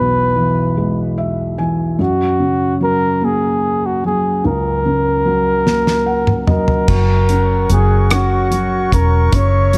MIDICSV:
0, 0, Header, 1, 6, 480
1, 0, Start_track
1, 0, Tempo, 815217
1, 1173, Time_signature, 6, 3, 24, 8
1, 5757, End_track
2, 0, Start_track
2, 0, Title_t, "Woodwind section"
2, 0, Program_c, 0, 71
2, 4049, Note_on_c, 0, 70, 63
2, 4050, Note_on_c, 0, 73, 58
2, 4050, Note_on_c, 0, 85, 67
2, 4051, Note_on_c, 0, 78, 61
2, 5477, Note_off_c, 0, 78, 0
2, 5484, Note_on_c, 0, 76, 60
2, 5757, Note_off_c, 0, 70, 0
2, 5757, Note_off_c, 0, 73, 0
2, 5757, Note_off_c, 0, 76, 0
2, 5757, Note_off_c, 0, 85, 0
2, 5757, End_track
3, 0, Start_track
3, 0, Title_t, "Flugelhorn"
3, 0, Program_c, 1, 56
3, 0, Note_on_c, 1, 71, 77
3, 679, Note_off_c, 1, 71, 0
3, 1190, Note_on_c, 1, 66, 74
3, 1639, Note_off_c, 1, 66, 0
3, 1670, Note_on_c, 1, 70, 90
3, 1913, Note_on_c, 1, 68, 74
3, 1922, Note_off_c, 1, 70, 0
3, 2273, Note_on_c, 1, 66, 65
3, 2282, Note_off_c, 1, 68, 0
3, 2384, Note_off_c, 1, 66, 0
3, 2393, Note_on_c, 1, 68, 74
3, 2607, Note_off_c, 1, 68, 0
3, 2632, Note_on_c, 1, 70, 84
3, 3800, Note_off_c, 1, 70, 0
3, 3834, Note_on_c, 1, 70, 75
3, 4521, Note_off_c, 1, 70, 0
3, 4547, Note_on_c, 1, 68, 76
3, 4786, Note_on_c, 1, 66, 69
3, 4795, Note_off_c, 1, 68, 0
3, 5260, Note_off_c, 1, 66, 0
3, 5264, Note_on_c, 1, 70, 77
3, 5506, Note_on_c, 1, 73, 96
3, 5515, Note_off_c, 1, 70, 0
3, 5757, Note_off_c, 1, 73, 0
3, 5757, End_track
4, 0, Start_track
4, 0, Title_t, "Felt piano"
4, 0, Program_c, 2, 0
4, 0, Control_c, 2, 64, 127
4, 0, Note_on_c, 2, 35, 55
4, 0, Note_on_c, 2, 47, 40
4, 0, Note_on_c, 2, 52, 40
4, 0, Note_on_c, 2, 56, 40
4, 205, Note_off_c, 2, 52, 0
4, 214, Note_on_c, 2, 52, 44
4, 454, Note_off_c, 2, 56, 0
4, 454, Note_on_c, 2, 56, 47
4, 693, Note_on_c, 2, 76, 49
4, 910, Note_off_c, 2, 47, 0
4, 916, Note_off_c, 2, 76, 0
4, 927, Note_off_c, 2, 52, 0
4, 932, Note_on_c, 2, 80, 55
4, 936, Note_on_c, 2, 52, 42
4, 1150, Note_off_c, 2, 35, 0
4, 1153, Note_off_c, 2, 56, 0
4, 1156, Note_off_c, 2, 80, 0
4, 1168, Note_off_c, 2, 52, 0
4, 1170, Note_on_c, 2, 42, 60
4, 1180, Control_c, 2, 64, 0
4, 1289, Control_c, 2, 64, 127
4, 1413, Note_on_c, 2, 49, 47
4, 1652, Note_on_c, 2, 54, 46
4, 1892, Note_on_c, 2, 58, 46
4, 2350, Note_off_c, 2, 49, 0
4, 2371, Note_off_c, 2, 54, 0
4, 2379, Note_on_c, 2, 54, 41
4, 2589, Note_off_c, 2, 42, 0
4, 2619, Note_on_c, 2, 37, 64
4, 2830, Note_off_c, 2, 58, 0
4, 2859, Note_on_c, 2, 49, 47
4, 3084, Note_off_c, 2, 54, 0
4, 3093, Note_on_c, 2, 54, 46
4, 3330, Note_on_c, 2, 58, 43
4, 3570, Note_on_c, 2, 78, 49
4, 3793, Note_off_c, 2, 49, 0
4, 3795, Note_off_c, 2, 78, 0
4, 3800, Note_off_c, 2, 54, 0
4, 3809, Note_on_c, 2, 54, 44
4, 3810, Note_on_c, 2, 75, 52
4, 4031, Note_off_c, 2, 58, 0
4, 4033, Note_off_c, 2, 37, 0
4, 4035, Note_off_c, 2, 75, 0
4, 4043, Note_off_c, 2, 54, 0
4, 4052, Note_on_c, 2, 54, 60
4, 4063, Control_c, 2, 64, 0
4, 4150, Control_c, 2, 64, 127
4, 4295, Note_on_c, 2, 61, 46
4, 4530, Note_off_c, 2, 54, 0
4, 4539, Note_on_c, 2, 54, 44
4, 4766, Note_off_c, 2, 61, 0
4, 4775, Note_on_c, 2, 61, 49
4, 5000, Note_off_c, 2, 54, 0
4, 5009, Note_on_c, 2, 54, 44
4, 5242, Note_off_c, 2, 61, 0
4, 5250, Note_on_c, 2, 61, 47
4, 5488, Note_on_c, 2, 49, 67
4, 5723, Note_off_c, 2, 54, 0
4, 5731, Note_on_c, 2, 54, 52
4, 5757, Note_off_c, 2, 49, 0
4, 5757, Note_off_c, 2, 54, 0
4, 5757, Note_off_c, 2, 61, 0
4, 5757, End_track
5, 0, Start_track
5, 0, Title_t, "Fingered electric bass"
5, 0, Program_c, 3, 33
5, 4054, Note_on_c, 3, 30, 84
5, 4510, Note_off_c, 3, 30, 0
5, 4532, Note_on_c, 3, 30, 78
5, 5229, Note_off_c, 3, 30, 0
5, 5253, Note_on_c, 3, 28, 73
5, 5479, Note_off_c, 3, 28, 0
5, 5492, Note_on_c, 3, 30, 86
5, 5757, Note_off_c, 3, 30, 0
5, 5757, End_track
6, 0, Start_track
6, 0, Title_t, "Drums"
6, 3337, Note_on_c, 9, 38, 43
6, 3396, Note_off_c, 9, 38, 0
6, 3458, Note_on_c, 9, 38, 44
6, 3517, Note_off_c, 9, 38, 0
6, 3693, Note_on_c, 9, 47, 55
6, 3752, Note_off_c, 9, 47, 0
6, 3812, Note_on_c, 9, 45, 68
6, 3871, Note_off_c, 9, 45, 0
6, 3932, Note_on_c, 9, 43, 61
6, 3991, Note_off_c, 9, 43, 0
6, 4050, Note_on_c, 9, 49, 78
6, 4052, Note_on_c, 9, 36, 77
6, 4109, Note_off_c, 9, 49, 0
6, 4111, Note_off_c, 9, 36, 0
6, 4292, Note_on_c, 9, 42, 40
6, 4350, Note_off_c, 9, 42, 0
6, 4531, Note_on_c, 9, 42, 50
6, 4590, Note_off_c, 9, 42, 0
6, 4772, Note_on_c, 9, 42, 68
6, 4777, Note_on_c, 9, 37, 95
6, 4831, Note_off_c, 9, 42, 0
6, 4836, Note_off_c, 9, 37, 0
6, 5015, Note_on_c, 9, 42, 42
6, 5074, Note_off_c, 9, 42, 0
6, 5254, Note_on_c, 9, 36, 73
6, 5258, Note_on_c, 9, 42, 60
6, 5313, Note_off_c, 9, 36, 0
6, 5317, Note_off_c, 9, 42, 0
6, 5491, Note_on_c, 9, 42, 70
6, 5493, Note_on_c, 9, 36, 76
6, 5550, Note_off_c, 9, 42, 0
6, 5551, Note_off_c, 9, 36, 0
6, 5731, Note_on_c, 9, 42, 45
6, 5757, Note_off_c, 9, 42, 0
6, 5757, End_track
0, 0, End_of_file